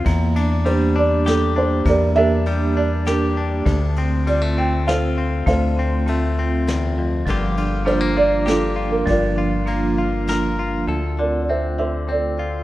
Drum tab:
RD |xxx-x-|x-x-x-|xxx-x-|x-x-x-|
SD |----o-|----o-|----o-|----o-|
BD |o-----|o-----|o-----|o-----|

RD |xxx-x-|x-x-x-|------|
SD |----o-|----o-|------|
BD |o-----|o-----|------|